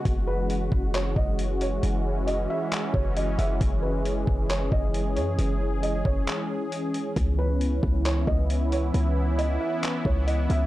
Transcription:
0.00 7.12 G#3 medium
0.00 3.57 F#4 medium
0.05 0.69 F#1 loud
0.05 7.12 E3 medium
0.05 10.66 C#4 medium
0.05 kick loud
0.05 closed hi-hat medium
0.27 0.90 B4 medium
0.50 closed hi-hat medium
0.72 1.15 F#1 loud
0.72 kick medium
0.94 1.15 C#5 medium
0.94 clap loud
0.94 closed hi-hat medium
1.16 1.80 F#1 loud
1.16 1.58 D#5 medium
1.16 kick medium
1.39 closed hi-hat medium
1.61 1.82 C#5 medium
1.61 closed hi-hat medium
1.83 2.47 F#1 loud
1.83 closed hi-hat medium
2.27 2.48 D#5 medium
2.27 closed hi-hat medium
2.50 2.92 E5 medium
2.72 clap medium
2.72 closed hi-hat medium
2.93 3.37 F#1 loud
2.93 3.15 C#5 medium
2.93 kick medium
3.17 3.38 D#5 medium
3.17 closed hi-hat medium
3.39 3.60 F#1 loud
3.39 3.60 E5 medium
3.39 closed hi-hat medium
3.61 4.25 F#1 loud
3.61 7.13 G#4 medium
3.61 kick loud
3.61 closed hi-hat medium
3.83 4.45 B4 medium
4.05 closed hi-hat medium
4.27 4.70 F#1 loud
4.27 kick medium
4.50 4.71 C#5 medium
4.50 clap loud
4.50 closed hi-hat medium
4.72 5.18 F#1 loud
4.72 5.14 D#5 medium
4.72 kick medium
4.94 closed hi-hat medium
5.16 5.37 F#2 loud
5.16 5.37 C#5 medium
5.16 closed hi-hat medium
5.39 6.03 F#1 loud
5.39 closed hi-hat medium
5.83 6.04 D#5 medium
5.83 closed hi-hat medium
6.05 6.27 F#1 loud
6.05 6.68 C#5 medium
6.05 kick medium
6.27 clap loud
6.27 closed hi-hat medium
6.72 closed hi-hat medium
6.94 closed hi-hat medium
7.16 7.80 C#2 loud
7.16 10.66 E3 medium
7.16 10.66 B3 medium
7.16 10.66 E4 medium
7.16 kick loud
7.16 closed hi-hat medium
7.39 8.01 B4 medium
7.61 closed hi-hat medium
7.83 8.26 C#2 loud
7.83 kick loud
8.05 8.27 C#5 medium
8.05 clap loud
8.05 closed hi-hat medium
8.27 8.91 C#2 loud
8.27 8.69 D#5 medium
8.27 kick medium
8.50 closed hi-hat medium
8.72 8.93 C#5 medium
8.72 closed hi-hat medium
8.94 9.58 C#2 loud
8.94 closed hi-hat medium
9.38 9.60 D#5 medium
9.38 closed hi-hat medium
9.61 10.03 E5 medium
9.83 clap loud
9.83 closed hi-hat medium
10.05 10.48 C#2 loud
10.05 10.26 C#5 medium
10.05 kick medium
10.27 10.48 D#5 medium
10.27 closed hi-hat medium
10.50 10.66 C#2 loud
10.50 10.66 E5 medium
10.50 closed hi-hat medium

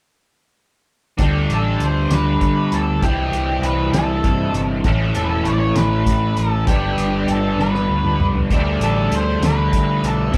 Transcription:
1.18 1.44 D2 medium
1.18 2.99 D3 medium
1.18 3.00 G3 medium
1.18 3.00 D4 medium
1.18 3.01 G4 medium
1.18 3.01 A4 medium
1.18 kick loud
1.18 closed hi-hat medium
1.49 1.75 A1 medium
1.49 closed hi-hat medium
1.54 1.83 A4 medium
1.80 2.06 D2 medium
1.80 closed hi-hat medium
1.84 2.10 C5 medium
2.10 2.36 D2 medium
2.10 2.75 B4 medium
2.10 snare medium
2.10 closed hi-hat medium
2.41 2.67 D3 medium
2.41 kick medium
2.41 closed hi-hat medium
2.72 2.97 D2 medium
2.72 3.02 A4 medium
2.72 closed hi-hat medium
3.02 3.28 C2 medium
3.02 4.83 C3 medium
3.02 4.84 E3 medium
3.02 4.84 G3 medium
3.02 4.84 C4 medium
3.02 4.85 E4 loud
3.02 3.63 G4 medium
3.02 kick medium
3.02 closed hi-hat medium
3.32 3.58 C2 medium
3.32 closed hi-hat medium
3.62 3.88 C2 medium
3.62 3.92 B4 medium
3.62 closed hi-hat medium
3.92 4.19 C2 medium
3.92 4.57 A4 medium
3.92 snare medium
3.92 closed hi-hat medium
4.24 4.49 G2 medium
4.24 kick medium
4.24 closed hi-hat medium
4.53 4.79 G1 medium
4.53 closed hi-hat medium
4.84 5.11 A1 medium
4.84 6.66 A2 medium
4.84 6.66 E3 medium
4.84 6.69 A3 medium
4.84 6.67 C#4 medium
4.84 6.67 E4 medium
4.84 kick medium
4.84 closed hi-hat medium
5.15 5.41 E1 medium
5.15 5.22 A4 medium
5.15 closed hi-hat medium
5.24 5.29 B4 medium
5.29 5.46 A4 medium
5.44 5.71 A1 medium
5.44 5.52 C#5 medium
5.44 closed hi-hat medium
5.53 5.58 D5 medium
5.59 5.76 C#5 medium
5.75 6.02 A1 medium
5.75 6.39 B4 medium
5.75 snare loud
5.75 closed hi-hat medium
6.06 6.32 A2 medium
6.06 kick medium
6.06 closed hi-hat medium
6.36 6.62 A1 medium
6.36 6.67 A4 medium
6.36 closed hi-hat soft
6.67 6.93 G1 medium
6.67 8.49 G2 medium
6.67 8.49 D3 medium
6.67 8.51 G3 medium
6.67 8.50 B3 medium
6.67 8.51 D4 medium
6.67 7.30 G4 medium
6.67 kick loud
6.67 closed hi-hat medium
6.98 7.24 G1 medium
6.98 closed hi-hat medium
7.28 7.54 G1 medium
7.28 7.61 A4 medium
7.28 closed hi-hat medium
7.58 7.85 G1 medium
7.58 8.25 B4 medium
7.58 snare soft
7.75 snare soft
7.88 8.15 D2 medium
8.04 mid tom medium
8.18 8.45 C2 medium
8.18 mid tom medium
8.35 floor tom medium
8.50 8.77 D2 medium
8.50 10.32 D3 medium
8.50 10.32 G3 medium
8.50 10.33 A3 medium
8.50 10.34 D4 medium
8.50 kick loud
8.50 closed hi-hat medium
8.79 9.06 A1 medium
8.79 closed hi-hat medium
8.84 9.14 A4 medium
9.11 9.37 D2 medium
9.11 closed hi-hat medium
9.15 9.45 C5 medium
9.40 9.67 D2 medium
9.40 snare loud
9.40 closed hi-hat medium
9.46 10.07 B4 medium
9.73 9.99 D3 medium
9.73 kick medium
9.73 closed hi-hat medium
10.03 10.29 B1 medium
10.03 10.36 A4 medium
10.03 closed hi-hat medium
10.32 10.38 C2 medium
10.32 10.38 C3 medium
10.32 10.38 G3 medium
10.32 10.38 C4 medium
10.32 kick loud
10.32 closed hi-hat medium

